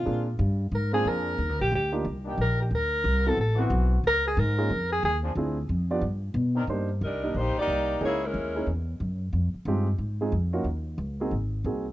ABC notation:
X:1
M:4/4
L:1/8
Q:"Swing" 1/4=181
K:Cm
V:1 name="Alto saxophone"
F2 z2 B A B2- | B G G z3 B G | B3 =A A z3 | B A B3 A A z |
z8 | z8 | z8 | z8 |
z8 |]
V:2 name="Saxophone section"
z8 | z8 | z8 | z8 |
z8 | z2 [G,DEB]2 [B,EGc] [B,EGd]3 | [^A,=E^G^c] [^G,^CE^A]3 z4 | z8 |
z8 |]
V:3 name="Grand piano"
[B,CDFA] z4 [B,CDFA]3 | z3 [B,DEFG] z4 | z3 [=B,C=E^F=A] z [B,CEF=B] z2 | z3 [B,_DEFA] z4 |
[CD=EFA] z2 [=B,DFGd] z4 | [B,DEGc] z2 [B,DEGe] z4 | [^A,^C^D=E^G] z2 [A,CDEG] z4 | z2 [A,CEFG] z2 [A,CEFA] z [B,_DEF^F] |
z3 [B,CE_GA] z2 [B,CEGA] z |]
V:4 name="Trombone section"
z4 z [F,B,DA]3 | z4 z [E,B,DG]3 | z4 z [=E,=B,C^F]3 | z6 z [F,CDA] |
z6 z [E,CDB] | z8 | z8 | z8 |
z8 |]
V:5 name="Upright bass" clef=bass
B,,2 G,,2 A,,2 F,,2 | (3E,, D,, B,,, D,,2 C,,2 B,,,2 | D,,2 C,,2 =A,,,2 =B,,,2 | _D,,2 A,,2 F,,2 E,,2 |
D,,2 F,,2 G,,2 =B,,2 | G,,2 C,,2 B,,, z C,,2 | ^C,,2 ^D,,2 =E,,2 ^F,,2 | F,, z G,,2 A,,2 F,,2 |
E,,2 _D,,2 A,,,2 C,,2 |]